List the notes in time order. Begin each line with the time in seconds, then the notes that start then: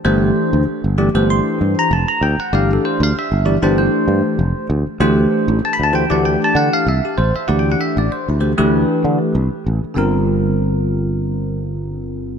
0.05 G1 E3 A3 D4 G4 C5
0.53 D2
0.68 muted fretless electric bass stroke
0.84 G1
0.98 E3 A3 D4 G4 D5
1.15 G1 E3 A3 D4 G4 C5
1.30 C6
1.61 G2
1.79 A#5
1.91 F1 A5
2.08 A#5
2.21 D2 G5
2.38 F#5, muted fretless electric bass stroke
2.53 G1 E3 A3 D4 G4 D5 F5
2.73 A4
2.85 C5
3.00 D2 F5
3.15 E5, muted fretless electric bass stroke
3.32 G1
3.45 E3 A3 D4 G4 D5
3.62 G1 E3 A3 D4 G4 C5 D5
3.78 C5
4.08 G2
4.39 F1
4.70 D2
4.87 muted fretless electric bass stroke
5.00 D2 E3 A3 D4 G4 C5
5.48 A1
5.62 A5, muted fretless electric bass stroke
5.73 B5
5.80 D2 A5
5.93 E3 A3 D4 G4 C5 G5
6.10 D2 E3 A3 D4 G4 D5 F#5
6.25 G5
6.44 A5
6.55 D3 F#5
6.73 F5
6.87 C2 E5
7.05 G4
7.18 A1 C5
7.35 E5, muted fretless electric bass stroke
7.48 D2 E3 A3 D4 G4 D5 F#5
7.59 G5
7.72 F#5
7.81 E5
7.97 A1 D5
8.12 C5
8.29 D2 E4
8.41 E3 A3 D4 G4 C5
8.58 D2 E3 A3 D4 G4 B4
9.04 D3
9.35 C2
9.66 A1
9.84 muted fretless electric bass stroke
9.94 G1 D3 G3 C4 F4 A#4